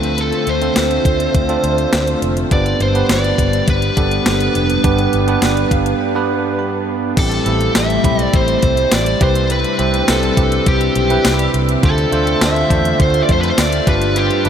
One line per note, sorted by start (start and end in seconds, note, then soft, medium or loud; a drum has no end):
0.00 0.31 D2 medium
0.00 0.72 D3 medium
0.00 2.49 D3 medium
0.00 2.47 A3 medium
0.00 0.47 C4 medium
0.00 2.47 C4 medium
0.00 0.47 D4 medium
0.00 0.47 F4 medium
0.00 2.49 F4 medium
0.00 0.48 A4 medium
0.00 0.20 B4 medium
0.00 2.49 E5 medium
0.00 closed hi-hat medium
0.18 0.49 A4 medium
0.18 closed hi-hat medium
0.32 closed hi-hat soft
0.47 0.68 D2 medium
0.47 2.19 C5 medium
0.47 closed hi-hat medium
0.61 1.24 C4 medium
0.61 1.24 D4 medium
0.61 1.24 F4 medium
0.61 1.24 A4 medium
0.61 closed hi-hat soft
0.76 0.97 D2 medium
0.76 snare loud
0.76 closed hi-hat medium
0.76 tambourine medium
0.91 closed hi-hat soft
1.05 1.26 D2 medium
1.05 kick medium
1.05 closed hi-hat medium
1.20 closed hi-hat medium
1.34 1.56 D2 medium
1.34 kick loud
1.34 closed hi-hat medium
1.49 2.21 C4 medium
1.49 2.22 D4 medium
1.49 2.22 F4 medium
1.49 2.22 A4 medium
1.49 closed hi-hat soft
1.64 1.85 D2 loud
1.64 closed hi-hat medium
1.78 closed hi-hat soft
1.93 2.14 D2 medium
1.93 snare loud
1.93 closed hi-hat medium
1.93 tambourine medium
2.07 closed hi-hat medium
2.22 2.43 F1 medium
2.22 closed hi-hat medium
2.37 closed hi-hat medium
2.51 2.72 G1 loud
2.51 3.35 G2 medium
2.51 7.13 G3 medium
2.51 7.13 B3 medium
2.51 2.82 B3 medium
2.51 7.13 D4 medium
2.51 2.82 D4 medium
2.51 2.82 G4 medium
2.51 2.83 B4 medium
2.51 2.82 D5 loud
2.51 kick loud
2.51 closed hi-hat medium
2.66 closed hi-hat soft
2.80 3.01 G1 loud
2.80 3.11 C5 medium
2.80 closed hi-hat medium
2.94 3.67 B3 medium
2.94 3.67 D4 medium
2.94 3.67 G4 medium
2.94 3.68 B4 medium
2.94 closed hi-hat medium
3.09 3.30 G1 loud
3.09 3.69 D5 loud
3.09 snare loud
3.09 closed hi-hat medium
3.09 tambourine medium
3.24 closed hi-hat soft
3.38 3.60 G1 medium
3.38 kick medium
3.38 closed hi-hat medium
3.53 closed hi-hat medium
3.68 3.89 G1 medium
3.68 6.56 B4 medium
3.68 kick loud
3.68 closed hi-hat medium
3.82 closed hi-hat medium
3.97 4.18 G1 loud
3.97 4.59 B3 medium
3.97 4.59 D4 medium
3.97 4.59 G4 medium
3.97 4.59 A4 medium
3.97 kick medium
3.97 closed hi-hat medium
4.11 closed hi-hat soft
4.26 4.47 G1 loud
4.26 snare loud
4.26 closed hi-hat loud
4.26 tambourine medium
4.40 closed hi-hat medium
4.55 4.76 F1 medium
4.55 closed hi-hat medium
4.70 closed hi-hat medium
4.84 5.05 G1 loud
4.84 5.68 G2 medium
4.84 5.15 B3 medium
4.84 5.15 D4 medium
4.84 5.15 G4 medium
4.84 5.15 B4 medium
4.84 kick loud
4.84 closed hi-hat medium
4.98 closed hi-hat soft
5.13 5.34 G1 loud
5.13 closed hi-hat medium
5.27 5.90 B3 medium
5.27 5.90 D4 medium
5.27 5.90 G4 medium
5.27 5.90 B4 medium
5.27 closed hi-hat medium
5.42 5.63 G1 medium
5.42 snare loud
5.42 closed hi-hat medium
5.42 tambourine medium
5.57 closed hi-hat soft
5.71 5.92 G1 medium
5.71 5.99 F5 medium
5.71 kick medium
5.71 closed hi-hat medium
5.86 closed hi-hat medium
6.01 6.55 G5 medium
6.15 6.87 B3 medium
6.15 6.87 D4 medium
6.15 6.88 G4 medium
6.15 6.88 B4 loud
6.59 7.13 B5 medium
7.16 7.38 A1 loud
7.16 8.00 A2 medium
7.16 9.19 G3 medium
7.16 9.19 A3 medium
7.16 7.37 C4 medium
7.16 9.19 C4 medium
7.16 7.38 E4 medium
7.16 7.38 G4 medium
7.16 7.38 A4 medium
7.16 7.78 A4 loud
7.16 kick loud
7.16 closed hi-hat medium
7.16 crash medium
7.32 closed hi-hat soft
7.46 7.67 A1 loud
7.46 7.87 C4 medium
7.46 7.88 E4 medium
7.46 7.88 G4 medium
7.46 7.88 A4 medium
7.46 closed hi-hat medium
7.61 closed hi-hat medium
7.75 7.97 A1 loud
7.75 8.23 E5 loud
7.75 snare loud
7.75 closed hi-hat medium
7.75 tambourine medium
7.90 closed hi-hat soft
8.04 8.25 B1 medium
8.04 8.87 C4 medium
8.04 8.87 E4 medium
8.04 8.87 G4 medium
8.04 8.88 B5 medium
8.04 kick medium
8.04 closed hi-hat medium
8.19 8.36 D5 loud
8.19 closed hi-hat medium
8.33 8.55 A1 loud
8.33 8.94 C5 loud
8.33 kick loud
8.33 closed hi-hat medium
8.48 closed hi-hat medium
8.62 8.84 C2 medium
8.62 kick medium
8.62 closed hi-hat medium
8.77 closed hi-hat medium
8.92 9.13 A1 loud
8.92 9.20 D5 medium
8.92 snare loud
8.92 closed hi-hat loud
8.92 tambourine medium
9.06 closed hi-hat medium
9.21 9.63 C2 loud
9.21 10.04 C3 medium
9.21 11.81 C3 medium
9.21 11.81 G3 medium
9.21 9.67 C4 medium
9.21 11.81 C4 medium
9.21 11.81 D4 medium
9.21 9.68 E4 medium
9.21 9.68 G4 medium
9.21 9.68 B4 medium
9.21 9.51 C5 medium
9.21 13.83 E5 medium
9.21 kick loud
9.21 closed hi-hat medium
9.35 closed hi-hat medium
9.50 10.11 B4 medium
9.50 closed hi-hat medium
9.64 closed hi-hat soft
9.79 10.00 C2 loud
9.79 10.20 C4 medium
9.79 10.21 E4 medium
9.79 10.21 G4 medium
9.79 10.21 C5 medium
9.79 closed hi-hat medium
9.94 closed hi-hat medium
10.08 10.29 C2 medium
10.08 10.68 A4 medium
10.08 snare loud
10.08 closed hi-hat medium
10.08 tambourine medium
10.23 closed hi-hat soft
10.37 10.58 C2 medium
10.37 10.89 C4 medium
10.37 10.89 E4 medium
10.37 10.89 G4 medium
10.37 10.90 B4 medium
10.37 kick medium
10.37 closed hi-hat medium
10.52 closed hi-hat medium
10.66 10.88 C2 loud
10.66 11.51 G4 medium
10.66 kick loud
10.66 closed hi-hat medium
10.81 closed hi-hat medium
10.96 11.17 B1 loud
10.96 closed hi-hat medium
11.10 11.62 C4 medium
11.10 11.62 E4 medium
11.10 11.62 G4 medium
11.10 11.62 B4 medium
11.10 closed hi-hat medium
11.25 11.46 C2 loud
11.25 snare loud
11.25 closed hi-hat loud
11.25 tambourine medium
11.39 closed hi-hat medium
11.54 11.75 C2 loud
11.54 closed hi-hat medium
11.69 closed hi-hat medium
11.83 12.04 D2 loud
11.83 12.67 D3 medium
11.83 13.85 D3 medium
11.83 13.85 A3 medium
11.83 13.85 C4 medium
11.83 12.04 D4 medium
11.83 12.04 F4 medium
11.83 14.49 F4 medium
11.83 12.04 A4 medium
11.83 12.44 A4 loud
11.83 12.04 C5 medium
11.83 kick loud
11.83 closed hi-hat medium
11.98 closed hi-hat soft
12.12 12.33 D2 medium
12.12 12.53 D4 medium
12.12 12.54 F4 medium
12.12 12.54 A4 medium
12.12 12.54 C5 medium
12.12 closed hi-hat medium
12.27 closed hi-hat medium
12.41 12.62 D2 loud
12.41 12.97 E5 loud
12.41 snare loud
12.41 closed hi-hat medium
12.41 tambourine medium
12.56 closed hi-hat soft
12.70 12.91 E2 loud
12.70 13.53 D4 medium
12.70 13.53 F4 medium
12.70 13.53 A4 medium
12.70 13.54 C5 medium
12.70 kick medium
12.70 closed hi-hat medium
12.85 closed hi-hat medium
13.00 13.21 D2 loud
13.00 13.23 C5 loud
13.00 kick loud
13.00 closed hi-hat medium
13.14 closed hi-hat soft
13.23 13.32 D5 medium
13.29 13.50 F2 medium
13.29 13.41 C5 medium
13.29 kick medium
13.29 closed hi-hat medium
13.41 13.50 B4 medium
13.41 closed hi-hat medium
13.50 13.59 C5 medium
13.58 13.79 D2 loud
13.58 13.89 D5 loud
13.58 snare loud
13.58 closed hi-hat loud
13.58 tambourine medium
13.73 closed hi-hat medium
13.87 14.29 G1 medium
13.87 14.49 G2 medium
13.87 14.49 G3 medium
13.87 14.34 D4 medium
13.87 14.49 D4 medium
13.87 14.34 F4 medium
13.87 14.34 G4 medium
13.87 14.49 A4 medium
13.87 14.49 B4 medium
13.87 14.34 B4 medium
13.87 14.18 B4 medium
13.87 kick loud
13.87 closed hi-hat medium
14.02 closed hi-hat medium
14.16 14.49 G4 loud
14.16 closed hi-hat medium
14.31 closed hi-hat soft
14.45 14.49 G1 medium
14.45 14.49 D4 medium
14.45 14.49 F4 medium
14.45 14.49 G4 medium
14.45 14.49 B4 medium
14.45 closed hi-hat medium